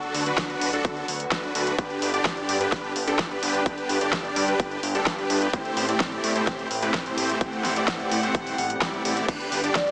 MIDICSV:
0, 0, Header, 1, 7, 480
1, 0, Start_track
1, 0, Key_signature, 1, "major"
1, 0, Tempo, 468750
1, 1828, Time_signature, 4, 2, 24, 8
1, 10149, End_track
2, 0, Start_track
2, 0, Title_t, "Vibraphone"
2, 0, Program_c, 0, 11
2, 9989, Note_on_c, 0, 74, 89
2, 10066, Note_off_c, 0, 74, 0
2, 10108, Note_on_c, 0, 74, 75
2, 10149, Note_off_c, 0, 74, 0
2, 10149, End_track
3, 0, Start_track
3, 0, Title_t, "Supersaw synth"
3, 0, Program_c, 1, 81
3, 0, Note_on_c, 1, 62, 77
3, 0, Note_on_c, 1, 66, 73
3, 0, Note_on_c, 1, 69, 90
3, 240, Note_off_c, 1, 62, 0
3, 240, Note_off_c, 1, 69, 0
3, 241, Note_off_c, 1, 66, 0
3, 270, Note_on_c, 1, 62, 92
3, 270, Note_on_c, 1, 66, 84
3, 270, Note_on_c, 1, 71, 98
3, 720, Note_off_c, 1, 62, 0
3, 720, Note_off_c, 1, 66, 0
3, 720, Note_off_c, 1, 71, 0
3, 750, Note_on_c, 1, 62, 98
3, 750, Note_on_c, 1, 66, 86
3, 751, Note_on_c, 1, 69, 107
3, 1080, Note_off_c, 1, 62, 0
3, 1081, Note_off_c, 1, 66, 0
3, 1081, Note_off_c, 1, 69, 0
3, 1351, Note_on_c, 1, 62, 104
3, 1351, Note_on_c, 1, 66, 91
3, 1351, Note_on_c, 1, 71, 111
3, 1561, Note_off_c, 1, 62, 0
3, 1561, Note_off_c, 1, 66, 0
3, 1561, Note_off_c, 1, 71, 0
3, 1591, Note_on_c, 1, 62, 77
3, 1591, Note_on_c, 1, 66, 75
3, 1591, Note_on_c, 1, 71, 86
3, 1801, Note_off_c, 1, 62, 0
3, 1801, Note_off_c, 1, 66, 0
3, 1801, Note_off_c, 1, 71, 0
3, 1829, Note_on_c, 1, 67, 69
3, 1829, Note_on_c, 1, 71, 88
3, 2160, Note_off_c, 1, 67, 0
3, 2160, Note_off_c, 1, 71, 0
3, 2189, Note_on_c, 1, 62, 92
3, 2189, Note_on_c, 1, 67, 80
3, 2190, Note_on_c, 1, 74, 107
3, 2640, Note_off_c, 1, 62, 0
3, 2640, Note_off_c, 1, 67, 0
3, 2640, Note_off_c, 1, 74, 0
3, 2668, Note_on_c, 1, 62, 96
3, 2668, Note_on_c, 1, 67, 85
3, 2668, Note_on_c, 1, 71, 110
3, 2999, Note_off_c, 1, 67, 0
3, 3000, Note_off_c, 1, 62, 0
3, 3000, Note_off_c, 1, 71, 0
3, 3148, Note_on_c, 1, 62, 100
3, 3148, Note_on_c, 1, 67, 88
3, 3148, Note_on_c, 1, 69, 105
3, 3359, Note_off_c, 1, 62, 0
3, 3359, Note_off_c, 1, 67, 0
3, 3359, Note_off_c, 1, 69, 0
3, 3389, Note_on_c, 1, 62, 100
3, 3389, Note_on_c, 1, 67, 95
3, 3389, Note_on_c, 1, 71, 117
3, 3720, Note_off_c, 1, 62, 0
3, 3720, Note_off_c, 1, 67, 0
3, 3720, Note_off_c, 1, 71, 0
3, 3749, Note_on_c, 1, 62, 78
3, 4080, Note_off_c, 1, 62, 0
3, 4109, Note_on_c, 1, 62, 91
3, 4109, Note_on_c, 1, 67, 83
3, 4109, Note_on_c, 1, 74, 102
3, 4560, Note_off_c, 1, 62, 0
3, 4560, Note_off_c, 1, 67, 0
3, 4560, Note_off_c, 1, 74, 0
3, 4588, Note_on_c, 1, 62, 101
3, 4589, Note_on_c, 1, 67, 86
3, 4589, Note_on_c, 1, 71, 104
3, 4919, Note_off_c, 1, 62, 0
3, 4920, Note_off_c, 1, 67, 0
3, 4920, Note_off_c, 1, 71, 0
3, 5068, Note_on_c, 1, 67, 90
3, 5069, Note_on_c, 1, 62, 97
3, 5069, Note_on_c, 1, 69, 112
3, 5280, Note_off_c, 1, 62, 0
3, 5280, Note_off_c, 1, 67, 0
3, 5280, Note_off_c, 1, 69, 0
3, 5309, Note_on_c, 1, 62, 99
3, 5309, Note_on_c, 1, 67, 95
3, 5309, Note_on_c, 1, 71, 107
3, 5640, Note_off_c, 1, 62, 0
3, 5640, Note_off_c, 1, 67, 0
3, 5640, Note_off_c, 1, 71, 0
3, 5669, Note_on_c, 1, 57, 77
3, 5669, Note_on_c, 1, 60, 72
3, 5669, Note_on_c, 1, 64, 71
3, 5669, Note_on_c, 1, 67, 73
3, 6000, Note_off_c, 1, 57, 0
3, 6000, Note_off_c, 1, 60, 0
3, 6000, Note_off_c, 1, 64, 0
3, 6000, Note_off_c, 1, 67, 0
3, 6028, Note_on_c, 1, 60, 86
3, 6028, Note_on_c, 1, 74, 100
3, 6029, Note_on_c, 1, 57, 93
3, 6029, Note_on_c, 1, 64, 82
3, 6029, Note_on_c, 1, 67, 85
3, 6479, Note_off_c, 1, 60, 0
3, 6480, Note_off_c, 1, 57, 0
3, 6480, Note_off_c, 1, 64, 0
3, 6480, Note_off_c, 1, 67, 0
3, 6480, Note_off_c, 1, 74, 0
3, 6509, Note_on_c, 1, 57, 95
3, 6509, Note_on_c, 1, 60, 87
3, 6509, Note_on_c, 1, 64, 83
3, 6509, Note_on_c, 1, 67, 87
3, 6509, Note_on_c, 1, 72, 107
3, 6840, Note_off_c, 1, 57, 0
3, 6840, Note_off_c, 1, 60, 0
3, 6840, Note_off_c, 1, 64, 0
3, 6840, Note_off_c, 1, 67, 0
3, 6840, Note_off_c, 1, 72, 0
3, 6988, Note_on_c, 1, 57, 94
3, 6988, Note_on_c, 1, 60, 86
3, 6988, Note_on_c, 1, 64, 92
3, 6988, Note_on_c, 1, 67, 89
3, 6988, Note_on_c, 1, 71, 107
3, 7199, Note_off_c, 1, 57, 0
3, 7199, Note_off_c, 1, 60, 0
3, 7199, Note_off_c, 1, 64, 0
3, 7199, Note_off_c, 1, 67, 0
3, 7199, Note_off_c, 1, 71, 0
3, 7229, Note_on_c, 1, 57, 105
3, 7229, Note_on_c, 1, 60, 88
3, 7229, Note_on_c, 1, 72, 113
3, 7230, Note_on_c, 1, 64, 92
3, 7230, Note_on_c, 1, 67, 94
3, 7560, Note_off_c, 1, 57, 0
3, 7560, Note_off_c, 1, 60, 0
3, 7560, Note_off_c, 1, 64, 0
3, 7560, Note_off_c, 1, 67, 0
3, 7560, Note_off_c, 1, 72, 0
3, 7588, Note_on_c, 1, 60, 73
3, 7588, Note_on_c, 1, 64, 70
3, 7589, Note_on_c, 1, 57, 79
3, 7589, Note_on_c, 1, 67, 72
3, 7919, Note_off_c, 1, 64, 0
3, 7920, Note_off_c, 1, 57, 0
3, 7920, Note_off_c, 1, 60, 0
3, 7920, Note_off_c, 1, 67, 0
3, 7950, Note_on_c, 1, 57, 95
3, 7950, Note_on_c, 1, 60, 81
3, 7950, Note_on_c, 1, 64, 86
3, 7950, Note_on_c, 1, 67, 83
3, 7950, Note_on_c, 1, 74, 96
3, 8400, Note_off_c, 1, 57, 0
3, 8400, Note_off_c, 1, 60, 0
3, 8400, Note_off_c, 1, 64, 0
3, 8400, Note_off_c, 1, 67, 0
3, 8400, Note_off_c, 1, 74, 0
3, 8428, Note_on_c, 1, 57, 101
3, 8428, Note_on_c, 1, 67, 89
3, 8428, Note_on_c, 1, 72, 103
3, 8429, Note_on_c, 1, 60, 91
3, 8429, Note_on_c, 1, 64, 86
3, 8759, Note_off_c, 1, 57, 0
3, 8760, Note_off_c, 1, 60, 0
3, 8760, Note_off_c, 1, 64, 0
3, 8760, Note_off_c, 1, 67, 0
3, 8760, Note_off_c, 1, 72, 0
3, 9029, Note_on_c, 1, 57, 101
3, 9029, Note_on_c, 1, 60, 94
3, 9030, Note_on_c, 1, 64, 93
3, 9030, Note_on_c, 1, 67, 98
3, 9030, Note_on_c, 1, 74, 115
3, 9240, Note_off_c, 1, 57, 0
3, 9240, Note_off_c, 1, 60, 0
3, 9240, Note_off_c, 1, 64, 0
3, 9240, Note_off_c, 1, 67, 0
3, 9240, Note_off_c, 1, 74, 0
3, 9268, Note_on_c, 1, 57, 76
3, 9268, Note_on_c, 1, 60, 74
3, 9268, Note_on_c, 1, 64, 76
3, 9268, Note_on_c, 1, 67, 77
3, 9268, Note_on_c, 1, 74, 88
3, 9479, Note_off_c, 1, 57, 0
3, 9479, Note_off_c, 1, 60, 0
3, 9479, Note_off_c, 1, 64, 0
3, 9479, Note_off_c, 1, 67, 0
3, 9479, Note_off_c, 1, 74, 0
3, 9509, Note_on_c, 1, 62, 78
3, 9509, Note_on_c, 1, 67, 75
3, 9840, Note_off_c, 1, 62, 0
3, 9840, Note_off_c, 1, 67, 0
3, 9869, Note_on_c, 1, 62, 92
3, 9869, Note_on_c, 1, 67, 80
3, 9869, Note_on_c, 1, 74, 102
3, 10149, Note_off_c, 1, 62, 0
3, 10149, Note_off_c, 1, 67, 0
3, 10149, Note_off_c, 1, 74, 0
3, 10149, End_track
4, 0, Start_track
4, 0, Title_t, "String section"
4, 0, Program_c, 2, 48
4, 0, Note_on_c, 2, 50, 76
4, 0, Note_on_c, 2, 54, 70
4, 0, Note_on_c, 2, 59, 68
4, 0, Note_on_c, 2, 66, 85
4, 1790, Note_off_c, 2, 54, 0
4, 1791, Note_off_c, 2, 66, 0
4, 1828, Note_on_c, 2, 67, 86
4, 1829, Note_on_c, 2, 55, 69
4, 5627, Note_off_c, 2, 59, 0
4, 5628, Note_off_c, 2, 50, 0
4, 5630, Note_off_c, 2, 55, 0
4, 5667, Note_on_c, 2, 52, 77
4, 5667, Note_on_c, 2, 57, 73
4, 5667, Note_on_c, 2, 60, 72
4, 7547, Note_off_c, 2, 67, 0
4, 7587, Note_on_c, 2, 78, 86
4, 9469, Note_off_c, 2, 52, 0
4, 9469, Note_off_c, 2, 57, 0
4, 9469, Note_off_c, 2, 60, 0
4, 9488, Note_off_c, 2, 78, 0
4, 9507, Note_on_c, 2, 50, 76
4, 9508, Note_on_c, 2, 55, 74
4, 9508, Note_on_c, 2, 59, 72
4, 9508, Note_on_c, 2, 67, 84
4, 10149, Note_off_c, 2, 50, 0
4, 10149, Note_off_c, 2, 55, 0
4, 10149, Note_off_c, 2, 59, 0
4, 10149, Note_off_c, 2, 67, 0
4, 10149, End_track
5, 0, Start_track
5, 0, Title_t, "Analog synth bass"
5, 0, Program_c, 3, 38
5, 148, Note_on_c, 3, 38, 91
5, 332, Note_off_c, 3, 38, 0
5, 388, Note_on_c, 3, 38, 101
5, 572, Note_off_c, 3, 38, 0
5, 629, Note_on_c, 3, 26, 93
5, 813, Note_off_c, 3, 26, 0
5, 868, Note_on_c, 3, 38, 85
5, 1052, Note_off_c, 3, 38, 0
5, 1109, Note_on_c, 3, 38, 83
5, 1293, Note_off_c, 3, 38, 0
5, 1348, Note_on_c, 3, 38, 83
5, 1532, Note_off_c, 3, 38, 0
5, 1588, Note_on_c, 3, 38, 84
5, 1772, Note_off_c, 3, 38, 0
5, 1828, Note_on_c, 3, 31, 101
5, 1920, Note_off_c, 3, 31, 0
5, 2068, Note_on_c, 3, 31, 90
5, 2252, Note_off_c, 3, 31, 0
5, 2308, Note_on_c, 3, 31, 101
5, 2492, Note_off_c, 3, 31, 0
5, 2550, Note_on_c, 3, 43, 94
5, 2733, Note_off_c, 3, 43, 0
5, 2788, Note_on_c, 3, 31, 88
5, 2972, Note_off_c, 3, 31, 0
5, 3028, Note_on_c, 3, 31, 90
5, 3212, Note_off_c, 3, 31, 0
5, 3268, Note_on_c, 3, 31, 107
5, 3453, Note_off_c, 3, 31, 0
5, 3506, Note_on_c, 3, 31, 98
5, 3691, Note_off_c, 3, 31, 0
5, 3747, Note_on_c, 3, 31, 99
5, 3840, Note_off_c, 3, 31, 0
5, 3988, Note_on_c, 3, 31, 93
5, 4172, Note_off_c, 3, 31, 0
5, 4227, Note_on_c, 3, 31, 97
5, 4412, Note_off_c, 3, 31, 0
5, 4466, Note_on_c, 3, 43, 96
5, 4651, Note_off_c, 3, 43, 0
5, 4706, Note_on_c, 3, 31, 80
5, 4892, Note_off_c, 3, 31, 0
5, 4947, Note_on_c, 3, 31, 90
5, 5132, Note_off_c, 3, 31, 0
5, 5187, Note_on_c, 3, 31, 111
5, 5372, Note_off_c, 3, 31, 0
5, 5426, Note_on_c, 3, 31, 102
5, 5612, Note_off_c, 3, 31, 0
5, 5668, Note_on_c, 3, 33, 99
5, 5760, Note_off_c, 3, 33, 0
5, 5907, Note_on_c, 3, 33, 92
5, 6092, Note_off_c, 3, 33, 0
5, 6147, Note_on_c, 3, 33, 102
5, 6332, Note_off_c, 3, 33, 0
5, 6388, Note_on_c, 3, 45, 96
5, 6572, Note_off_c, 3, 45, 0
5, 6627, Note_on_c, 3, 33, 88
5, 6812, Note_off_c, 3, 33, 0
5, 6867, Note_on_c, 3, 33, 85
5, 7052, Note_off_c, 3, 33, 0
5, 7108, Note_on_c, 3, 33, 106
5, 7292, Note_off_c, 3, 33, 0
5, 7347, Note_on_c, 3, 33, 100
5, 7532, Note_off_c, 3, 33, 0
5, 7588, Note_on_c, 3, 33, 102
5, 7680, Note_off_c, 3, 33, 0
5, 7827, Note_on_c, 3, 33, 93
5, 8012, Note_off_c, 3, 33, 0
5, 8068, Note_on_c, 3, 33, 104
5, 8252, Note_off_c, 3, 33, 0
5, 8308, Note_on_c, 3, 45, 99
5, 8492, Note_off_c, 3, 45, 0
5, 8547, Note_on_c, 3, 33, 84
5, 8732, Note_off_c, 3, 33, 0
5, 8789, Note_on_c, 3, 33, 93
5, 8973, Note_off_c, 3, 33, 0
5, 9027, Note_on_c, 3, 33, 88
5, 9212, Note_off_c, 3, 33, 0
5, 9269, Note_on_c, 3, 33, 82
5, 9453, Note_off_c, 3, 33, 0
5, 9507, Note_on_c, 3, 31, 99
5, 9600, Note_off_c, 3, 31, 0
5, 9747, Note_on_c, 3, 31, 89
5, 9932, Note_off_c, 3, 31, 0
5, 9987, Note_on_c, 3, 31, 101
5, 10149, Note_off_c, 3, 31, 0
5, 10149, End_track
6, 0, Start_track
6, 0, Title_t, "Swell"
6, 0, Program_c, 4, 103
6, 8548, Note_on_c, 4, 60, 63
6, 9508, Note_off_c, 4, 60, 0
6, 10149, End_track
7, 0, Start_track
7, 0, Title_t, "Drums"
7, 29, Note_on_c, 9, 42, 25
7, 131, Note_off_c, 9, 42, 0
7, 148, Note_on_c, 9, 46, 113
7, 251, Note_off_c, 9, 46, 0
7, 269, Note_on_c, 9, 42, 53
7, 371, Note_off_c, 9, 42, 0
7, 386, Note_on_c, 9, 38, 125
7, 388, Note_on_c, 9, 36, 127
7, 389, Note_on_c, 9, 42, 54
7, 489, Note_off_c, 9, 38, 0
7, 490, Note_off_c, 9, 36, 0
7, 491, Note_off_c, 9, 42, 0
7, 510, Note_on_c, 9, 42, 27
7, 612, Note_off_c, 9, 42, 0
7, 629, Note_on_c, 9, 46, 109
7, 731, Note_off_c, 9, 46, 0
7, 749, Note_on_c, 9, 42, 51
7, 851, Note_off_c, 9, 42, 0
7, 868, Note_on_c, 9, 36, 127
7, 869, Note_on_c, 9, 42, 51
7, 970, Note_off_c, 9, 36, 0
7, 971, Note_off_c, 9, 42, 0
7, 989, Note_on_c, 9, 42, 27
7, 1092, Note_off_c, 9, 42, 0
7, 1109, Note_on_c, 9, 46, 116
7, 1211, Note_off_c, 9, 46, 0
7, 1229, Note_on_c, 9, 42, 51
7, 1331, Note_off_c, 9, 42, 0
7, 1346, Note_on_c, 9, 38, 120
7, 1348, Note_on_c, 9, 36, 119
7, 1349, Note_on_c, 9, 42, 51
7, 1449, Note_off_c, 9, 38, 0
7, 1450, Note_off_c, 9, 36, 0
7, 1451, Note_off_c, 9, 42, 0
7, 1469, Note_on_c, 9, 42, 25
7, 1571, Note_off_c, 9, 42, 0
7, 1588, Note_on_c, 9, 46, 107
7, 1691, Note_off_c, 9, 46, 0
7, 1709, Note_on_c, 9, 42, 53
7, 1812, Note_off_c, 9, 42, 0
7, 1828, Note_on_c, 9, 36, 111
7, 1829, Note_on_c, 9, 42, 49
7, 1930, Note_off_c, 9, 36, 0
7, 1932, Note_off_c, 9, 42, 0
7, 1948, Note_on_c, 9, 42, 25
7, 2051, Note_off_c, 9, 42, 0
7, 2069, Note_on_c, 9, 46, 112
7, 2171, Note_off_c, 9, 46, 0
7, 2189, Note_on_c, 9, 42, 53
7, 2291, Note_off_c, 9, 42, 0
7, 2307, Note_on_c, 9, 38, 124
7, 2308, Note_on_c, 9, 36, 127
7, 2309, Note_on_c, 9, 42, 52
7, 2409, Note_off_c, 9, 38, 0
7, 2410, Note_off_c, 9, 36, 0
7, 2411, Note_off_c, 9, 42, 0
7, 2429, Note_on_c, 9, 42, 27
7, 2531, Note_off_c, 9, 42, 0
7, 2548, Note_on_c, 9, 46, 106
7, 2651, Note_off_c, 9, 46, 0
7, 2669, Note_on_c, 9, 42, 53
7, 2772, Note_off_c, 9, 42, 0
7, 2787, Note_on_c, 9, 38, 62
7, 2788, Note_on_c, 9, 36, 124
7, 2789, Note_on_c, 9, 42, 55
7, 2889, Note_off_c, 9, 38, 0
7, 2890, Note_off_c, 9, 36, 0
7, 2891, Note_off_c, 9, 42, 0
7, 2909, Note_on_c, 9, 42, 25
7, 3012, Note_off_c, 9, 42, 0
7, 3029, Note_on_c, 9, 46, 113
7, 3131, Note_off_c, 9, 46, 0
7, 3149, Note_on_c, 9, 42, 53
7, 3252, Note_off_c, 9, 42, 0
7, 3266, Note_on_c, 9, 38, 114
7, 3268, Note_on_c, 9, 36, 119
7, 3268, Note_on_c, 9, 42, 49
7, 3368, Note_off_c, 9, 38, 0
7, 3370, Note_off_c, 9, 36, 0
7, 3371, Note_off_c, 9, 42, 0
7, 3388, Note_on_c, 9, 42, 27
7, 3491, Note_off_c, 9, 42, 0
7, 3509, Note_on_c, 9, 46, 109
7, 3611, Note_off_c, 9, 46, 0
7, 3629, Note_on_c, 9, 42, 51
7, 3731, Note_off_c, 9, 42, 0
7, 3747, Note_on_c, 9, 36, 111
7, 3748, Note_on_c, 9, 42, 54
7, 3850, Note_off_c, 9, 36, 0
7, 3850, Note_off_c, 9, 42, 0
7, 3867, Note_on_c, 9, 42, 26
7, 3970, Note_off_c, 9, 42, 0
7, 3987, Note_on_c, 9, 46, 103
7, 4089, Note_off_c, 9, 46, 0
7, 4107, Note_on_c, 9, 42, 55
7, 4210, Note_off_c, 9, 42, 0
7, 4226, Note_on_c, 9, 38, 119
7, 4227, Note_on_c, 9, 36, 122
7, 4228, Note_on_c, 9, 42, 53
7, 4328, Note_off_c, 9, 38, 0
7, 4330, Note_off_c, 9, 36, 0
7, 4330, Note_off_c, 9, 42, 0
7, 4347, Note_on_c, 9, 42, 27
7, 4450, Note_off_c, 9, 42, 0
7, 4467, Note_on_c, 9, 46, 110
7, 4569, Note_off_c, 9, 46, 0
7, 4587, Note_on_c, 9, 42, 53
7, 4690, Note_off_c, 9, 42, 0
7, 4707, Note_on_c, 9, 36, 123
7, 4707, Note_on_c, 9, 42, 56
7, 4809, Note_off_c, 9, 36, 0
7, 4809, Note_off_c, 9, 42, 0
7, 4827, Note_on_c, 9, 42, 28
7, 4929, Note_off_c, 9, 42, 0
7, 4947, Note_on_c, 9, 46, 106
7, 5049, Note_off_c, 9, 46, 0
7, 5067, Note_on_c, 9, 42, 52
7, 5170, Note_off_c, 9, 42, 0
7, 5185, Note_on_c, 9, 38, 114
7, 5187, Note_on_c, 9, 36, 117
7, 5187, Note_on_c, 9, 42, 52
7, 5288, Note_off_c, 9, 38, 0
7, 5290, Note_off_c, 9, 36, 0
7, 5290, Note_off_c, 9, 42, 0
7, 5307, Note_on_c, 9, 42, 27
7, 5410, Note_off_c, 9, 42, 0
7, 5427, Note_on_c, 9, 46, 109
7, 5529, Note_off_c, 9, 46, 0
7, 5547, Note_on_c, 9, 42, 54
7, 5649, Note_off_c, 9, 42, 0
7, 5667, Note_on_c, 9, 36, 106
7, 5667, Note_on_c, 9, 42, 57
7, 5770, Note_off_c, 9, 36, 0
7, 5770, Note_off_c, 9, 42, 0
7, 5788, Note_on_c, 9, 42, 26
7, 5890, Note_off_c, 9, 42, 0
7, 5907, Note_on_c, 9, 46, 107
7, 6009, Note_off_c, 9, 46, 0
7, 6027, Note_on_c, 9, 42, 53
7, 6130, Note_off_c, 9, 42, 0
7, 6145, Note_on_c, 9, 38, 123
7, 6147, Note_on_c, 9, 36, 118
7, 6147, Note_on_c, 9, 42, 56
7, 6247, Note_off_c, 9, 38, 0
7, 6250, Note_off_c, 9, 36, 0
7, 6250, Note_off_c, 9, 42, 0
7, 6267, Note_on_c, 9, 42, 28
7, 6370, Note_off_c, 9, 42, 0
7, 6387, Note_on_c, 9, 46, 100
7, 6490, Note_off_c, 9, 46, 0
7, 6508, Note_on_c, 9, 42, 54
7, 6611, Note_off_c, 9, 42, 0
7, 6626, Note_on_c, 9, 38, 62
7, 6628, Note_on_c, 9, 36, 121
7, 6628, Note_on_c, 9, 42, 58
7, 6728, Note_off_c, 9, 38, 0
7, 6730, Note_off_c, 9, 36, 0
7, 6731, Note_off_c, 9, 42, 0
7, 6749, Note_on_c, 9, 42, 29
7, 6851, Note_off_c, 9, 42, 0
7, 6868, Note_on_c, 9, 46, 104
7, 6971, Note_off_c, 9, 46, 0
7, 6988, Note_on_c, 9, 42, 54
7, 7091, Note_off_c, 9, 42, 0
7, 7107, Note_on_c, 9, 38, 113
7, 7108, Note_on_c, 9, 36, 112
7, 7109, Note_on_c, 9, 42, 54
7, 7209, Note_off_c, 9, 38, 0
7, 7210, Note_off_c, 9, 36, 0
7, 7211, Note_off_c, 9, 42, 0
7, 7229, Note_on_c, 9, 42, 29
7, 7331, Note_off_c, 9, 42, 0
7, 7349, Note_on_c, 9, 46, 105
7, 7451, Note_off_c, 9, 46, 0
7, 7470, Note_on_c, 9, 42, 58
7, 7572, Note_off_c, 9, 42, 0
7, 7588, Note_on_c, 9, 36, 106
7, 7589, Note_on_c, 9, 42, 55
7, 7690, Note_off_c, 9, 36, 0
7, 7692, Note_off_c, 9, 42, 0
7, 7710, Note_on_c, 9, 42, 27
7, 7812, Note_off_c, 9, 42, 0
7, 7828, Note_on_c, 9, 38, 63
7, 7830, Note_on_c, 9, 46, 113
7, 7930, Note_off_c, 9, 38, 0
7, 7933, Note_off_c, 9, 46, 0
7, 7949, Note_on_c, 9, 42, 56
7, 8052, Note_off_c, 9, 42, 0
7, 8067, Note_on_c, 9, 38, 127
7, 8068, Note_on_c, 9, 36, 123
7, 8070, Note_on_c, 9, 42, 60
7, 8170, Note_off_c, 9, 36, 0
7, 8170, Note_off_c, 9, 38, 0
7, 8172, Note_off_c, 9, 42, 0
7, 8190, Note_on_c, 9, 42, 28
7, 8293, Note_off_c, 9, 42, 0
7, 8310, Note_on_c, 9, 46, 104
7, 8412, Note_off_c, 9, 46, 0
7, 8430, Note_on_c, 9, 42, 57
7, 8532, Note_off_c, 9, 42, 0
7, 8548, Note_on_c, 9, 36, 122
7, 8549, Note_on_c, 9, 42, 59
7, 8650, Note_off_c, 9, 36, 0
7, 8652, Note_off_c, 9, 42, 0
7, 8670, Note_on_c, 9, 46, 61
7, 8772, Note_off_c, 9, 46, 0
7, 8789, Note_on_c, 9, 46, 103
7, 8892, Note_off_c, 9, 46, 0
7, 8909, Note_on_c, 9, 42, 55
7, 9011, Note_off_c, 9, 42, 0
7, 9026, Note_on_c, 9, 38, 122
7, 9028, Note_on_c, 9, 36, 116
7, 9029, Note_on_c, 9, 42, 55
7, 9129, Note_off_c, 9, 38, 0
7, 9130, Note_off_c, 9, 36, 0
7, 9131, Note_off_c, 9, 42, 0
7, 9149, Note_on_c, 9, 42, 28
7, 9251, Note_off_c, 9, 42, 0
7, 9268, Note_on_c, 9, 46, 110
7, 9371, Note_off_c, 9, 46, 0
7, 9388, Note_on_c, 9, 42, 60
7, 9491, Note_off_c, 9, 42, 0
7, 9507, Note_on_c, 9, 36, 112
7, 9508, Note_on_c, 9, 42, 58
7, 9508, Note_on_c, 9, 49, 79
7, 9610, Note_off_c, 9, 36, 0
7, 9610, Note_off_c, 9, 42, 0
7, 9610, Note_off_c, 9, 49, 0
7, 9629, Note_on_c, 9, 42, 27
7, 9731, Note_off_c, 9, 42, 0
7, 9748, Note_on_c, 9, 46, 107
7, 9850, Note_off_c, 9, 46, 0
7, 9868, Note_on_c, 9, 42, 58
7, 9971, Note_off_c, 9, 42, 0
7, 9986, Note_on_c, 9, 38, 127
7, 9987, Note_on_c, 9, 36, 126
7, 9989, Note_on_c, 9, 42, 61
7, 10089, Note_off_c, 9, 38, 0
7, 10090, Note_off_c, 9, 36, 0
7, 10091, Note_off_c, 9, 42, 0
7, 10109, Note_on_c, 9, 42, 30
7, 10149, Note_off_c, 9, 42, 0
7, 10149, End_track
0, 0, End_of_file